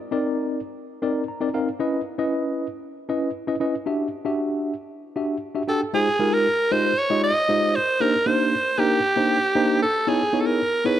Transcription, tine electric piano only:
0.11 0.59 C4 medium
0.11 0.59 D#4 medium
0.11 0.59 A#4 medium
0.11 0.59 D5 loud
1.02 1.22 C4 medium
1.02 1.23 D#4 medium
1.02 1.23 A#4 medium
1.02 1.23 D5 medium
1.28 1.52 A#5 medium
1.41 1.48 C4 medium
1.41 1.48 D#4 medium
1.41 1.48 A#4 medium
1.41 1.48 D5 medium
1.54 1.67 C4 medium
1.54 1.68 D#4 medium
1.54 1.68 A#4 medium
1.54 1.68 F5 medium
1.79 2.00 C#4 medium
1.79 2.00 E4 medium
1.79 2.00 B4 medium
1.79 2.00 D#5 loud
2.18 2.66 C#4 medium
2.18 2.66 E4 medium
2.18 2.66 B4 medium
2.18 2.66 D#5 loud
3.09 3.29 C#4 medium
3.09 3.29 E4 medium
3.09 3.30 B4 medium
3.09 3.30 D#5 medium
3.47 3.54 C#4 medium
3.47 3.55 E4 medium
3.47 3.55 B4 medium
3.47 3.55 D#5 medium
3.60 3.74 C#4 medium
3.60 3.74 E4 medium
3.60 3.74 B4 medium
3.60 3.74 D#5 medium
3.86 4.07 D4 medium
3.86 4.07 F#4 medium
3.86 4.07 G4 medium
3.86 4.07 E5 medium
4.25 4.73 D4 medium
4.25 4.73 F#4 medium
4.25 4.73 G4 medium
4.25 4.73 E5 loud
5.16 5.36 D4 medium
5.16 5.36 F#4 medium
5.16 5.37 G4 medium
5.16 5.37 E5 medium
5.55 5.62 D4 medium
5.55 5.62 F#4 medium
5.55 5.62 G4 medium
5.55 5.62 E5 medium
5.68 5.81 D4 medium
5.68 5.81 F#4 medium
5.68 5.81 G4 medium
5.68 5.82 G5 medium
5.93 6.07 G#3 medium
5.93 6.07 D#4 medium
5.93 6.07 F4 medium
5.93 6.07 G4 medium
5.93 6.08 C5 medium
6.19 6.46 G#3 medium
6.19 6.47 D#4 medium
6.19 6.47 F4 medium
6.19 6.47 G4 medium
6.19 6.47 A#4 medium
6.71 6.92 G#3 medium
6.71 6.92 D#4 medium
6.71 6.92 F4 medium
6.71 6.92 G4 medium
6.71 6.92 C5 medium
7.10 7.30 G#3 medium
7.10 7.30 D#4 medium
7.10 7.30 F4 medium
7.10 7.31 G4 medium
7.10 7.31 D#5 medium
7.49 7.76 G#3 medium
7.49 7.76 D#4 medium
7.49 7.76 F4 medium
7.49 7.76 G4 medium
7.49 7.76 C5 medium
8.00 8.14 A#3 medium
8.00 8.14 D4 medium
8.00 8.14 D#4 medium
8.00 8.14 G4 medium
8.00 8.14 C5 medium
8.26 8.53 A#3 medium
8.26 8.53 D4 medium
8.26 8.54 D#4 medium
8.26 8.54 G4 medium
8.26 8.54 C5 medium
8.78 8.98 A#3 medium
8.78 8.98 D4 medium
8.78 8.98 D#4 medium
8.78 8.99 G4 medium
8.78 8.99 A#4 medium
9.16 9.37 A#3 medium
9.16 9.37 D4 medium
9.16 9.37 D#4 medium
9.16 9.37 G4 medium
9.16 9.37 C5 medium
9.55 9.83 A#3 medium
9.55 9.83 D4 medium
9.55 9.83 D#4 medium
9.55 9.83 G4 medium
9.55 9.83 C5 loud
10.07 10.21 B3 medium
10.07 10.21 D#4 medium
10.07 10.21 E4 medium
10.07 10.21 G#4 medium
10.07 10.21 C#5 medium
10.33 10.60 B3 medium
10.33 10.60 D#4 medium
10.33 10.60 E4 medium
10.33 10.61 G#4 medium
10.33 10.61 C#5 medium
10.85 11.00 B3 medium
10.85 11.00 D#4 medium
10.85 11.00 E4 medium
10.85 11.00 G#4 medium
10.85 11.00 C#5 medium

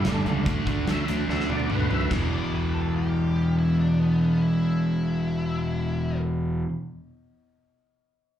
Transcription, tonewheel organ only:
0.08 0.44 A3 medium
0.08 0.47 D4 medium
0.91 1.09 E5 medium
1.30 1.49 E5 medium
1.51 1.70 D5 medium
1.74 1.92 B4 medium
1.93 2.11 B4 medium
1.93 2.12 E5 medium

